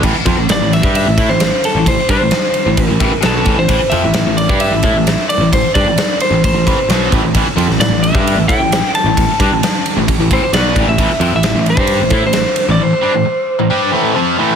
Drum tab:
CC |x---------------|----------------|----------------|----------------|
RD |--x-x-x-x-x-x-x-|x-x-x-x-x-x-x-x-|x-x-x-x-x-x-x-x-|x-x-x-x-x-x-x-x-|
SD |----o-o-----o---|----o-------o---|----o-------o---|----o-------o---|
BD |o-o----o--o-----|o-o-----o-o---o-|o------o--o-----|o-o-----o-o---o-|

CC |----------------|----------------|----------------|----------------|
RD |x-x-x-x-x-x-x-x-|x-x-x-x-x-x-x-x-|x-x-x-x-x-x-x-x-|----------------|
SD |---oo-------o---|----o-------o---|----o-------o---|----------------|
BD |o------o--o-----|o-o-----o-o---o-|o------o--o-----|----------------|